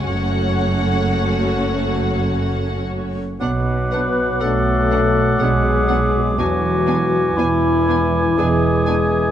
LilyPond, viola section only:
\new Staff \with { instrumentName = "Viola section" } { \time 3/4 \key b \dorian \tempo 4 = 60 <a cis'>2. | b8 b8 b8 b8 b8 b8 | b8 b8 b8 b8 b8 b8 | }